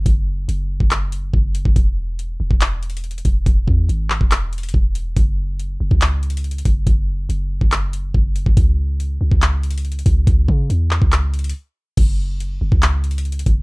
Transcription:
0.06 0.47 F#1 loud
0.06 kick loud
0.06 closed hi-hat medium
0.48 0.79 F#1 loud
0.48 closed hi-hat medium
0.80 1.31 F#1 loud
0.80 kick medium
0.91 clap loud
0.91 closed hi-hat medium
1.12 closed hi-hat medium
1.34 1.64 F#1 loud
1.34 kick medium
1.55 closed hi-hat medium
1.65 1.76 F#1 loud
1.65 kick loud
1.76 2.37 E1 loud
1.76 kick loud
1.76 closed hi-hat medium
2.19 closed hi-hat medium
2.40 2.50 E1 loud
2.51 3.22 E1 loud
2.51 kick medium
2.61 clap loud
2.61 closed hi-hat medium
2.83 closed hi-hat medium
2.90 closed hi-hat medium
2.97 closed hi-hat medium
3.04 closed hi-hat soft
3.11 closed hi-hat medium
3.18 closed hi-hat medium
3.25 3.45 E1 loud
3.25 kick medium
3.25 closed hi-hat medium
3.46 3.67 E1 loud
3.46 kick loud
3.46 closed hi-hat medium
3.68 3.88 E2 loud
3.68 kick medium
3.89 4.19 G#1 loud
3.89 closed hi-hat medium
4.10 clap medium
4.21 4.72 E1 loud
4.21 kick medium
4.31 clap loud
4.31 closed hi-hat medium
4.53 closed hi-hat medium
4.58 closed hi-hat medium
4.63 closed hi-hat medium
4.69 closed hi-hat medium
4.74 5.15 E1 loud
4.74 kick loud
4.95 closed hi-hat medium
5.16 5.78 F#1 loud
5.16 kick loud
5.16 closed hi-hat medium
5.59 closed hi-hat medium
5.80 5.91 F#1 loud
5.91 6.63 C#2 loud
5.91 kick medium
6.01 clap loud
6.01 closed hi-hat medium
6.23 closed hi-hat soft
6.30 closed hi-hat medium
6.37 closed hi-hat medium
6.44 closed hi-hat soft
6.51 closed hi-hat medium
6.58 closed hi-hat medium
6.65 6.86 F#1 loud
6.65 kick medium
6.65 closed hi-hat medium
6.87 7.28 F#1 loud
6.87 kick loud
6.87 closed hi-hat medium
7.29 7.60 F#1 loud
7.29 closed hi-hat medium
7.61 8.12 F#1 loud
7.61 kick medium
7.72 clap loud
7.72 closed hi-hat medium
7.93 closed hi-hat medium
8.14 8.45 F#1 loud
8.14 kick loud
8.36 closed hi-hat medium
8.46 8.56 F#1 loud
8.46 kick loud
8.57 9.18 C#2 loud
8.57 kick loud
8.57 closed hi-hat medium
9.00 closed hi-hat medium
9.21 9.31 C#2 loud
9.31 10.03 C#2 loud
9.31 kick medium
9.42 clap loud
9.42 closed hi-hat medium
9.63 closed hi-hat soft
9.70 closed hi-hat medium
9.78 closed hi-hat medium
9.85 closed hi-hat soft
9.92 closed hi-hat medium
9.99 closed hi-hat medium
10.06 10.26 C#2 loud
10.06 kick medium
10.06 closed hi-hat medium
10.27 10.48 C#2 loud
10.27 kick loud
10.27 closed hi-hat medium
10.48 10.69 C#3 loud
10.48 kick medium
10.70 11.00 E2 loud
10.70 closed hi-hat medium
10.91 clap medium
11.02 11.53 C#2 loud
11.02 kick medium
11.12 clap loud
11.12 closed hi-hat medium
11.34 closed hi-hat medium
11.39 closed hi-hat medium
11.44 closed hi-hat medium
11.49 closed hi-hat medium
11.97 12.59 F#1 loud
11.97 kick loud
11.97 closed hi-hat medium
11.97 crash loud
12.40 closed hi-hat medium
12.61 12.71 F#1 loud
12.72 13.43 C#2 loud
12.72 kick medium
12.82 clap loud
12.82 closed hi-hat medium
13.04 closed hi-hat medium
13.11 closed hi-hat medium
13.18 closed hi-hat medium
13.25 closed hi-hat soft
13.32 closed hi-hat medium
13.39 closed hi-hat medium
13.46 13.62 F#1 loud
13.46 kick medium
13.46 closed hi-hat medium

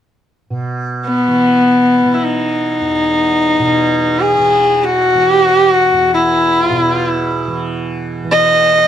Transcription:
0.50 3.59 B2 soft
1.06 2.16 B3 medium
1.28 2.04 E3 soft
2.04 4.38 E3 soft
2.14 2.26 E4 soft
2.24 4.21 D#4 medium
2.81 5.92 E2 soft
3.59 6.70 B2 medium
4.20 4.86 G#4 medium
4.38 5.15 E3 medium
4.84 5.30 F#4 medium
5.15 7.48 E3 soft
5.30 5.43 G4 medium
5.43 5.57 F#4 medium
5.57 5.69 G4 medium
5.69 6.13 F#4 medium
5.93 8.88 E2 medium
6.14 6.65 E4 medium
6.65 6.79 F4 medium
6.70 8.88 B2 medium
6.79 6.94 E4 medium
6.94 7.07 F4 medium
7.07 7.58 E4 medium
7.48 8.25 E3 soft
8.25 8.88 E3 medium
8.31 8.88 D#5 medium

